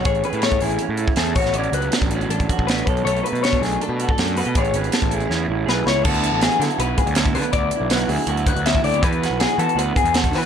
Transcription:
<<
  \new Staff \with { instrumentName = "Clean electric guitar" } { \time 4/4 \key d \lydian \tempo 4 = 161 cis''8 b'8 cis''8 gis'8 r4 a'8 cis''8 | d''8 b'8 a'8 fis'8 a'4 b'8 cis''8 | cis''8 b'8 cis''8 gis'8 a'4 a'8 b'8 | cis''8 b'8 a'8 gis'8 r4 b'8 cis''8 |
a'4 gis'8 a'8 b'8 gis'8 a'8 b'8 | d''4 b'8 gis'8 a'8 b'8 e''8 d''8 | b'4 gis'8 a'8 b'8 gis'8 a'8 b'8 | }
  \new Staff \with { instrumentName = "Clean electric guitar" } { \time 4/4 \key d \lydian << { gis'8 cis'4 e'8 cis'8 e'8 gis'8 fis'8 | cis'4 d'8 cis'8 d'8 fis'8 d'8 a'8 | a4 d'8 a8 d'8 fis'16 a'16 d'8 fis'16 a'16 | gis'8 cis'4 e'8 cis'8 e'8 gis'8 e'8 |
<fis b e' fis'>8 e'8 fis'8 e'8 fis'4 cis'16 e'16 b8 | r8 e'8 fis'8 e'8 fis'4 cis'16 e'16 a16 b16 | r8 fis'8 fis'8 fis'8 fis'4 fis'4 | } \\ { <a, e>4 e2~ e8 a,8~ | a,8 fis2. b,8~ | b,8 fis2. b,8 | a,4 e2. |
d4. fis4 a,4. | d4. fis4 a,4. | e4. b4 b,4. | } >> }
  \new Staff \with { instrumentName = "Picked electric bass" } { \clef bass \time 4/4 \key d \lydian a,,8 r16 a,8. a,,8 r16 a,8 r16 e,8 a,,8~ | a,,8 cis,8 r16 a,,8. a,,8 r16 a,,8. b,,8 | b,,8 r16 b,8. b,,8 r16 b,8 r16 fis,8. b,16 | a,,8 gis,,8 r16 a,,8. e,8 a,,8 b,,8 cis,8 |
d,8. a,,8 r16 d16 r16 b,,8 r16 d,8. d16 r16 | d,8 r16 b,,8. d,16 r16 d,8. d,8. d,8 | e,8. b,,8 r16 e16 r16 d,8 r16 e,8. e16 r16 | }
  \new DrumStaff \with { instrumentName = "Drums" } \drummode { \time 4/4 <hh bd>16 hh16 hh16 hh16 <hh sn>16 <hh bd>16 hho16 hh16 hh8 hh16 bd16 <hh sn>16 hh16 <hho bd>16 <hh sn>16 | hh16 hh16 hh16 hh16 <hh sn>16 <hh bd>16 hh16 hh16 hh16 <hh bd>16 <hh bd>16 bd16 <hh sn>16 hh16 <hh bd>16 hh16 | hh16 hh16 hh16 hh16 <hh sn>16 <hh bd>16 <hho sn>16 hh16 hh8 hh16 bd16 <hh sn>16 hh16 hho16 hh16 | <hh bd>16 hh16 hh16 hh16 <hh sn>16 <hh bd>16 hh16 hh16 sn4 sn8 sn8 |
<cymc bd>16 hh16 hh8 <hh sn>16 hh16 <hh sn>16 hh16 hh8 <hh bd>16 hh16 <hh sn>16 <hh bd>16 hho16 hh16 | <hh bd>8 hh8 <hh sn>16 hh16 hho8 hh16 hh16 <hh bd>16 hh16 <hh sn>16 bd16 hho16 hh16 | <hh bd>16 hh16 <hh sn>8 <hh sn>16 hh16 hh16 hh16 hh8 <hh bd>16 hh16 <hh sn>16 <hh bd>16 <hho sn>8 | }
>>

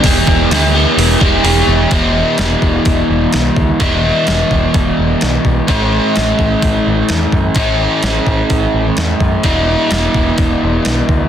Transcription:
<<
  \new Staff \with { instrumentName = "Overdriven electric guitar" } { \time 4/4 \key e \major \tempo 4 = 128 <e, e gis b e' gis'>4 <gis b e' gis'>8 <gis b e' gis'>4 <gis b e' gis'>8 <e, e gis b e' gis'>4 | <e, b, e gis b e'>1 | <e, b, e gis b e'>1 | <a, e a cis' e'>1 |
<a, e a cis' e'>1 | <e, b, e gis b e'>1 | }
  \new Staff \with { instrumentName = "Picked electric bass" } { \clef bass \time 4/4 \key e \major e,,8 e,,8 d,4 e,,8 e,,8 e,,8 e,,8 | e,,4 e,,8 e,,8 e,,8 e,,8 b,,8 d,8 | e,,4 e,,8 e,,8 e,,8 e,,8 b,,8 b,,8 | a,,4 a,,8 a,,8 a,,8 a,,8 e,8 fis,8 |
a,,4 a,,8 a,,8 a,,8 a,,8 e,8 fis,8 | e,,4 e,,8 e,,8 e,,8 e,,8 b,,8 d,8 | }
  \new DrumStaff \with { instrumentName = "Drums" } \drummode { \time 4/4 <hho bd>8 bd8 <hho sn>4 hho8 bd8 hho4 | <hho bd>4 <hho sn>8 bd8 <hho bd>4 <hho sn>8 bd8 | <hho bd>4 <hho sn>8 bd8 <hho bd>4 <hho sn>8 bd8 | <hho bd>4 <hho sn>8 bd8 <hho bd>4 <hho sn>8 bd8 |
<hho bd>4 <hho sn>8 bd8 <hho bd>4 <hho sn>8 bd8 | <hho bd>4 <hho sn>8 bd8 <hho bd>4 <hho sn>8 bd8 | }
>>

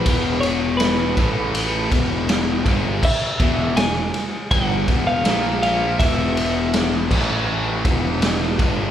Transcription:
<<
  \new Staff \with { instrumentName = "Clean electric guitar" } { \time 4/4 \key a \lydian \tempo 4 = 81 b'8 cis''8 b'2~ b'8 r8 | e''4 gis''4 fis''8. f''8. eis''8 | e''2 r2 | }
  \new Staff \with { instrumentName = "Distorted electric guitar" } { \clef bass \time 4/4 \key a \lydian <e, b, e>4. <a, e a>4 <e, b, e>4 <g, d g>8 | r8 <e, b, e>8 <e, b,>8 r8 <g, d g>8 <e, b, e>8 <ais, eis ais>4 | <e, b, e>4. <a, e a>4 <e, b, e>4 <g, d g>8 | }
  \new Staff \with { instrumentName = "Picked electric bass" } { \clef bass \time 4/4 \key a \lydian e,,4. a,,4 e,,4 g,,8 | r8 e,,8 e,,8 r8 g,,8 e,,8 ais,,4 | e,,4. a,,4 e,,4 g,,8 | }
  \new DrumStaff \with { instrumentName = "Drums" } \drummode { \time 4/4 <bd cymr>8 cymr8 <cymr sn>8 <bd cymr>8 cymr8 <bd cymr>8 <cymr sn>8 <bd cymr>8 | <cymc bd>8 <bd cymr>8 <cymr sn>8 cymr8 <bd cymr>8 <bd cymr>8 <cymr sn>8 cymr8 | <bd cymr>8 cymr8 <cymr sn>8 <cymc bd>8 r8 <bd cymr>8 <cymr sn>8 <bd cymr>8 | }
>>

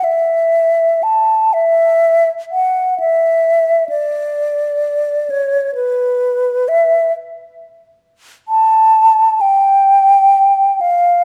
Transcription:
\new Staff \with { instrumentName = "Flute" } { \time 6/8 \key e \mixolydian \tempo 4. = 43 e''4 a''8 e''4 fis''8 | e''4 d''4. cis''8 | b'4 e''8 r4. | \key g \dorian a''4 g''4. f''8 | }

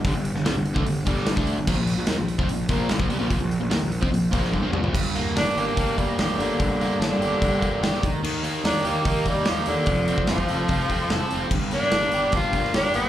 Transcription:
<<
  \new Staff \with { instrumentName = "Tenor saxophone" } { \time 4/4 \key g \minor \tempo 4 = 146 r1 | r1 | r1 | r4 d'8 bes8 bes8 g8 f8 d8~ |
d4 d2. | r4 d'8 bes8 bes8 g8 f8 d8~ | d4 f2. | r8 d'4. f'4 d'8 c'8 | }
  \new Staff \with { instrumentName = "Overdriven electric guitar" } { \clef bass \time 4/4 \key g \minor <g, d>16 <g, d>8 <g, d>16 <c g>16 <g, d>8 <d a>16 <g, d>8 <g, d g>8. <d a d'>8 <g, d>16 | <bes, f>16 <bes, f>8 <bes, f>16 <ees bes>16 <bes, f>8 <f c'>16 <bes, f>8 <bes, f bes>8 <g, d>16 <bes, f>16 <c g>16 <bes, f>16 | <bes, f>16 <bes, f>8 <bes, f>16 <ees bes>16 <bes, f>8 <f c'>16 <bes, f>8 <bes, f bes>8 <g, d>16 <bes, f>16 <c g>16 <bes, f>16 | g,8 bes8 d'8 g'8 d'8 bes8 g'8 bes8 |
g,8 bes8 d'8 g'8 d'8 bes8 g'8 ees8 | ees8 bes8 ees'8 g'8 ees'8 bes8 g'8 bes8 | f8 c'8 f'8 a'8 f'8 c'8 a'8 c'8 | g,8 bes8 d'8 g'8 d'8 bes8 g'8 bes8 | }
  \new Staff \with { instrumentName = "Fingered electric bass" } { \clef bass \time 4/4 \key g \minor g,,16 g,,8 g,,16 c,16 g,,8 d,16 g,,8 g,,8. d,8 g,,16 | bes,,16 bes,,8 bes,,16 ees,16 bes,,8 f,16 bes,,8 bes,,8 g,,16 bes,,16 c,16 bes,,16 | bes,,16 bes,,8 bes,,16 ees,16 bes,,8 f,16 bes,,8 bes,,8 g,,16 bes,,16 c,16 bes,,16 | g,,4 g,,8 g,,8 g,,4 g,,8 g,,8 |
g,,4 g,,8 g,,8 g,,4 g,,8 ees,8 | ees,4 ees,8 ees,8 ees,4 ees,8 ees,8 | f,,4 f,,8 f,,8 f,,4 f,,8 f,,8 | g,,4 g,,8 g,,8 g,,4 g,,8 g,,8 | }
  \new DrumStaff \with { instrumentName = "Drums" } \drummode { \time 4/4 <hho bd>8 hho16 sn16 <hho sn>8 hho16 bd16 hho8 <hho bd>16 sn16 <hho sn>16 bd16 hho8 | <cymc bd>8 hho8 <hho sn>8 hho16 bd16 hho8 <hho bd>8 <hho sn>16 bd16 hho8 | <hho bd>8 hho8 <hho sn>8 hho16 bd16 hho8 <hho bd>16 sn16 bd8 toml16 tomfh16 | <cymc bd>8 hho8 <hho sn>8 hho8 <hho bd>8 <hho bd>8 <hho sn>8 hho8 |
<hho bd>8 hho8 <hho sn>8 hho8 <hho bd>8 <hho bd>8 <hho sn>16 sn16 <hho bd>8 | cymc8 hho8 <hho sn>8 hho8 <hho bd>8 <hho bd>8 <hho sn>8 hho8 | <hho bd>8 hho16 bd16 <hho sn>16 bd16 hho8 <hho bd>8 <hho bd>8 <hho sn>8 hho8 | <cymc bd>8 hho16 sn16 <hho sn>8 hho8 <hho bd>8 <hho bd>16 sn16 <hho sn>8 hho8 | }
>>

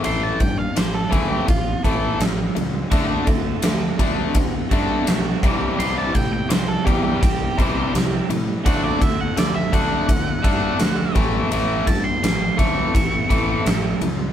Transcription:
<<
  \new Staff \with { instrumentName = "Lead electric guitar" } { \time 4/4 \key d \major \tempo 4 = 84 c'''16 a''16 g''16 f''16 c''16 a'16 gis'16 g'16 f'8 a'8 r4 | r1 | c'''16 a''16 g''16 g''16 c''16 a'16 g'16 g'16 g'8 c''8 r4 | fis''16 d''16 e''16 fis''16 d''16 e''16 fis''2 r8 |
r8 a''16 c'''8. cis'''2~ cis'''8 | }
  \new Staff \with { instrumentName = "Overdriven electric guitar" } { \time 4/4 \key d \major r1 | <d a d' fis'>2~ <d a d' fis'>8 <d a d' fis'>8 <d a d' fis'>8 <c e g c' g'>8~ | <c e g c' g'>2 <c e g c' g'>8 <c e g c' g'>4 r8 | <d a d' fis'>2~ <d a d' fis'>8 <d a d' fis'>8 <d a d' fis'>8 <a, e a cis' e'>8~ |
<a, e a cis' e'>2 <a, e a cis' e'>8 <a, e a cis' e'>4 r8 | }
  \new Staff \with { instrumentName = "Overdriven electric guitar" } { \clef bass \time 4/4 \key d \major <a, e a>8 <a, e>8 <a, e>8 <a, e a>8 <a, e>8 <a, e a>8 <a, e>8 <a, e>8 | <d a d'>8 <d a>8 <d a>8 <d a d'>8 <d a>8 <d a d'>8 <d a>8 <c e g>8 | <c e g>8 <c e>8 <c e>8 <c e g>8 <c e>8 <c e g>8 <c e>8 <c e>8 | <d a d'>8 <d a>8 <d a>8 <d a d'>8 <d a>8 <d a d'>8 <d a>8 <a, e a>8 |
<a, e a>8 <a, e>8 <a, e>8 <a, e a>8 <a, e>8 <a, e a>8 <a, e>8 <a, e>8 | }
  \new Staff \with { instrumentName = "Fingered electric bass" } { \clef bass \time 4/4 \key d \major a,,8 g,8 a,,8 d,8 a,,8 a,,8 a,,8 cis,8 | d,8 d,8 d,8 d,8 d,8 g,8 b,,8 c,8 | c,8 a,8 c,8 e,8 c,8 c,8 c,8 a,8 | d,8 d,8 d,8 d,8 d,8 g,8 d,8 a,,8 |
a,,8 g,8 a,,8 d,8 a,,8 a,,8 a,,8 cis,8 | }
  \new DrumStaff \with { instrumentName = "Drums" } \drummode { \time 4/4 cymr8 <bd cymr>8 <cymr sn>8 <bd cymr>8 <bd cymr>8 <bd cymr>8 <cymr sn>8 cymr8 | <bd cymr>8 <bd cymr>8 <cymr sn>8 <bd cymr>8 <bd cymr>8 <bd cymr>8 <cymr sn>8 <bd cymr>8 | cymr8 <bd cymr>8 <cymr sn>8 <bd cymr>8 <bd cymr>8 <bd cymr>8 <cymr sn>8 cymr8 | <bd cymr>8 <bd cymr>8 <cymr sn>8 <bd cymr>8 <bd cymr>8 <bd cymr>8 <cymr sn>8 <bd cymr>8 |
cymr8 <bd cymr>8 <cymr sn>8 <bd cymr>8 <bd cymr>8 <bd cymr>8 <cymr sn>8 cymr8 | }
>>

